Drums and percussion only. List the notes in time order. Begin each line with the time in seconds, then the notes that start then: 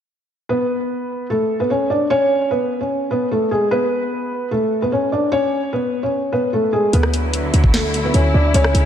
6.93 closed hi-hat
7.03 cross-stick
7.14 closed hi-hat
7.33 closed hi-hat
7.54 closed hi-hat
7.64 kick
7.74 snare, closed hi-hat
7.94 closed hi-hat
8.14 closed hi-hat
8.54 closed hi-hat
8.64 cross-stick
8.75 closed hi-hat